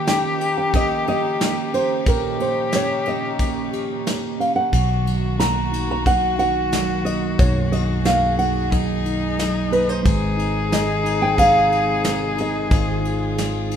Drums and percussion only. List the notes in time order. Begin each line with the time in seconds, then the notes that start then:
0.07 snare, ride
0.41 ride
0.74 kick, ride
1.07 ride
1.41 snare, ride
1.74 ride
2.06 kick, ride
2.40 ride
2.72 snare, ride
3.06 ride
3.39 kick, ride
3.73 ride
4.07 snare, ride
4.41 ride
4.73 kick, ride
5.07 ride
5.40 snare, ride
5.74 ride
6.06 kick, ride
6.39 ride
6.72 snare, ride
7.06 ride
7.39 kick, ride
7.73 ride
8.05 snare, ride
8.39 ride
8.72 kick, ride
9.05 ride
9.39 snare, ride
9.72 ride
10.05 kick, ride
10.39 ride
10.72 snare, ride
11.06 ride
11.38 kick, ride
11.72 ride
12.04 snare, ride
12.38 ride
12.71 kick, ride
13.05 ride
13.38 snare, ride
13.71 ride